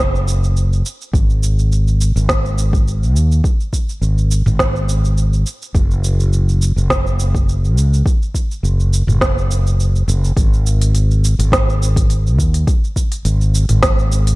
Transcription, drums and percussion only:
0.00 shaker soft
0.15 shaker soft
0.28 shaker medium
0.44 shaker soft
0.57 shaker soft
0.73 shaker soft
0.86 shaker medium
1.01 shaker soft
1.14 kick loud
1.14 shaker soft
1.30 shaker soft
1.43 shaker medium
1.59 shaker soft
1.72 shaker soft
1.88 shaker soft
2.01 shaker medium
2.17 shaker soft
2.29 kick loud
2.29 snare medium
2.29 shaker soft
2.45 shaker soft
2.58 shaker medium
2.73 kick loud
2.73 shaker soft
2.88 shaker soft
3.03 shaker soft
3.16 shaker medium
3.32 shaker soft
3.44 kick loud
3.44 shaker soft
3.60 shaker soft
3.73 kick medium
3.73 shaker medium
3.89 shaker soft
4.02 shaker soft
4.18 shaker soft
4.31 shaker medium
4.46 mid tom medium
4.46 shaker soft
4.59 kick medium
4.59 snare medium
4.59 shaker soft
4.76 shaker soft
4.89 shaker medium
5.05 shaker soft
5.18 shaker soft
5.33 shaker soft
5.47 shaker medium
5.62 shaker soft
5.75 kick loud
5.75 shaker soft
5.91 shaker soft
6.04 shaker medium
6.20 shaker soft
6.33 shaker soft
6.49 shaker soft
6.62 shaker medium
6.78 shaker soft
6.90 kick loud
6.90 snare medium
6.90 shaker soft
7.07 shaker soft
7.20 shaker medium
7.35 kick loud
7.35 shaker soft
7.49 shaker soft
7.65 shaker soft
7.78 shaker medium
7.94 shaker soft
8.06 kick loud
8.06 shaker soft
8.22 shaker soft
8.35 kick medium
8.35 shaker medium
8.51 shaker soft
8.65 shaker soft
8.80 shaker soft
8.93 shaker medium
9.08 mid tom medium
9.08 shaker soft
9.21 kick loud
9.21 snare medium
9.21 shaker soft
9.38 shaker soft
9.51 shaker medium
9.67 shaker soft
9.80 shaker soft
9.96 shaker soft
10.09 shaker medium
10.24 shaker soft
10.37 kick loud
10.37 open hi-hat soft
10.37 shaker soft
10.54 shaker soft
10.67 shaker medium
10.82 open hi-hat medium
10.82 shaker soft
10.95 open hi-hat soft
10.95 shaker soft
11.11 shaker soft
11.25 shaker medium
11.40 open hi-hat medium
11.40 shaker soft
11.52 kick loud
11.52 snare medium
11.52 open hi-hat soft
11.52 shaker soft
11.69 shaker soft
11.83 shaker medium
11.96 kick loud
11.96 open hi-hat medium
11.96 shaker soft
12.10 open hi-hat soft
12.10 shaker soft
12.27 shaker soft
12.39 kick medium
12.39 shaker medium
12.54 open hi-hat medium
12.54 shaker soft
12.67 kick loud
12.67 open hi-hat soft
12.67 shaker soft
12.84 shaker soft
12.96 kick medium
12.96 shaker medium
13.12 open hi-hat medium
13.12 shaker soft
13.25 open hi-hat soft
13.25 shaker soft
13.41 shaker soft
13.55 shaker medium
13.69 mid tom medium
13.69 open hi-hat medium
13.69 shaker soft
13.83 kick loud
13.83 snare medium
13.83 open hi-hat soft
13.83 shaker soft
13.99 shaker soft
14.12 shaker medium
14.27 open hi-hat medium
14.27 shaker soft

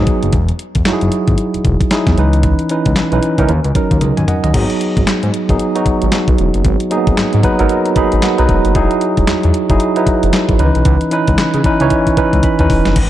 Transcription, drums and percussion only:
0.07 kick medium
0.07 closed hi-hat medium
0.23 closed hi-hat soft
0.33 kick loud
0.33 closed hi-hat medium
0.49 closed hi-hat soft
0.59 closed hi-hat medium
0.75 kick medium
0.75 closed hi-hat medium
0.85 snare loud
0.85 clap medium
0.85 closed hi-hat medium
1.01 closed hi-hat soft
1.12 closed hi-hat medium
1.28 kick medium
1.28 closed hi-hat medium
1.38 closed hi-hat medium
1.54 closed hi-hat medium
1.65 kick medium
1.65 closed hi-hat medium
1.81 kick medium
1.81 closed hi-hat medium
1.91 snare loud
1.91 clap medium
1.91 closed hi-hat medium
2.07 kick medium
2.07 snare medium
2.07 closed hi-hat soft
2.18 closed hi-hat medium
2.33 closed hi-hat medium
2.43 kick loud
2.43 closed hi-hat medium
2.59 closed hi-hat medium
2.69 closed hi-hat medium
2.86 kick loud
2.86 closed hi-hat medium
2.96 snare loud
2.96 clap medium
2.96 closed hi-hat medium
3.12 closed hi-hat soft
3.23 closed hi-hat medium
3.38 kick medium
3.38 closed hi-hat medium
3.49 closed hi-hat medium
3.64 closed hi-hat medium
3.75 kick medium
3.75 closed hi-hat medium
3.91 kick medium
3.91 closed hi-hat medium
4.01 closed hi-hat medium
4.01 high tom medium
4.17 closed hi-hat soft
4.17 mid tom medium
4.28 closed hi-hat medium
4.28 mid tom medium
4.44 closed hi-hat soft
4.44 floor tom medium
4.54 kick loud
4.54 closed hi-hat medium
4.54 crash medium
4.70 closed hi-hat medium
4.81 closed hi-hat medium
4.97 kick loud
4.97 closed hi-hat medium
5.07 snare loud
5.07 clap medium
5.07 closed hi-hat medium
5.23 closed hi-hat soft
5.34 closed hi-hat medium
5.49 kick medium
5.49 closed hi-hat soft
5.59 closed hi-hat medium
5.76 closed hi-hat medium
5.86 kick medium
5.86 closed hi-hat medium
6.02 closed hi-hat medium
6.12 snare loud
6.12 clap medium
6.12 closed hi-hat medium
6.28 kick loud
6.28 closed hi-hat soft
6.38 closed hi-hat medium
6.54 closed hi-hat medium
6.65 kick loud
6.65 closed hi-hat medium
6.80 closed hi-hat medium
6.91 closed hi-hat medium
7.07 kick loud
7.07 closed hi-hat medium
7.17 snare loud
7.17 clap medium
7.17 closed hi-hat medium
7.33 closed hi-hat soft
7.43 kick medium
7.43 closed hi-hat medium
7.59 closed hi-hat soft
7.69 closed hi-hat medium
7.86 closed hi-hat medium
7.96 kick medium
7.96 closed hi-hat medium
8.12 closed hi-hat medium
8.22 snare loud
8.22 clap medium
8.22 closed hi-hat medium
8.38 closed hi-hat soft
8.49 kick medium
8.49 closed hi-hat medium
8.65 closed hi-hat medium
8.75 kick loud
8.75 closed hi-hat medium
8.91 closed hi-hat medium
9.01 closed hi-hat medium
9.17 kick medium
9.17 closed hi-hat medium
9.27 snare loud
9.27 clap medium
9.27 closed hi-hat medium
9.43 closed hi-hat soft
9.54 closed hi-hat medium
9.70 kick loud
9.70 closed hi-hat medium
9.80 closed hi-hat medium
9.96 closed hi-hat medium
10.07 kick medium
10.07 closed hi-hat medium
10.23 closed hi-hat medium
10.33 snare loud
10.33 clap medium
10.33 closed hi-hat medium
10.49 kick medium
10.49 closed hi-hat soft
10.59 closed hi-hat medium
10.75 closed hi-hat medium
10.85 kick loud
10.85 closed hi-hat medium
11.01 closed hi-hat medium
11.11 closed hi-hat medium
11.28 kick loud
11.28 closed hi-hat medium
11.38 snare loud
11.38 clap medium
11.38 closed hi-hat medium
11.54 closed hi-hat soft
11.64 kick medium
11.64 closed hi-hat medium
11.80 closed hi-hat medium
11.90 kick medium
11.90 closed hi-hat medium
12.07 kick medium
12.07 closed hi-hat medium
12.17 kick medium
12.17 closed hi-hat medium
12.33 kick medium
12.33 closed hi-hat medium
12.43 kick medium
12.43 closed hi-hat medium
12.59 kick medium
12.59 closed hi-hat soft
12.70 kick loud
12.70 open hi-hat medium
12.85 snare medium
12.85 closed hi-hat medium
12.96 kick loud
12.96 closed hi-hat medium
12.96 crash loud

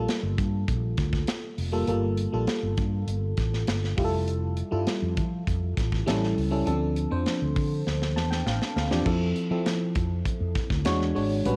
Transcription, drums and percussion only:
0.09 snare medium
0.09 closed hi-hat medium
0.38 kick medium
0.38 closed hi-hat medium
0.68 kick medium
0.68 closed hi-hat medium
0.98 kick medium
0.98 snare soft
0.98 closed hi-hat medium
1.13 kick medium
1.13 snare soft
1.27 snare loud
1.27 closed hi-hat loud
1.58 open hi-hat medium
1.88 closed hi-hat medium
2.18 closed hi-hat medium
2.47 snare loud
2.47 closed hi-hat medium
2.77 kick medium
2.77 closed hi-hat medium
3.08 closed hi-hat medium
3.37 kick medium
3.37 snare soft
3.37 closed hi-hat medium
3.53 snare soft
3.67 snare loud
3.67 closed hi-hat loud
3.84 snare soft
3.98 kick loud
3.98 open hi-hat medium
4.28 closed hi-hat medium
4.57 closed hi-hat medium
4.87 snare medium
4.87 closed hi-hat medium
5.17 kick medium
5.17 closed hi-hat medium
5.47 kick medium
5.47 closed hi-hat medium
5.77 kick medium
5.77 snare soft
5.77 closed hi-hat medium
5.92 kick medium
5.92 snare soft
6.08 snare loud
6.08 closed hi-hat loud
6.24 snare soft
6.38 open hi-hat medium
6.67 closed hi-hat medium
6.96 closed hi-hat medium
7.26 snare medium
7.26 closed hi-hat medium
7.56 kick medium
7.56 open hi-hat medium
7.87 snare medium
8.02 snare medium
8.17 snare medium
8.32 snare medium
8.47 snare medium
8.62 snare medium
8.77 snare medium
8.91 snare medium
9.06 kick loud
9.06 crash medium
9.36 closed hi-hat medium
9.66 snare medium
9.66 closed hi-hat medium
9.95 kick medium
9.95 closed hi-hat medium
10.25 kick medium
10.25 closed hi-hat medium
10.55 kick medium
10.55 snare soft
10.55 closed hi-hat medium
10.70 kick medium
10.70 snare soft
10.85 snare loud
10.85 closed hi-hat loud
11.01 snare soft
11.16 open hi-hat medium
11.45 closed hi-hat medium

